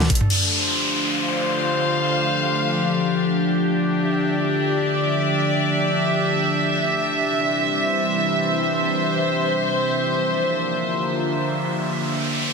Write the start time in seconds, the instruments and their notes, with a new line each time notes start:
Already playing: ambient pad D3 A3 A4
0.00 snare
0.10 kick, closed hi-hat
0.15 closed hi-hat
0.21 mid tom
0.30 ambient pad D3 F3 A3 F4, string section D4, crash, downlifter
0.42 string section G4
0.60 string section C5
1.03 string section F5
3.54 ambient pad G4
3.69 string section D5
4.00 string section E5
6.79 ambient pad C3 E3 G3 E4
7.40 string section C5
10.03 ambient pad D3 F3 A#3 F4, riser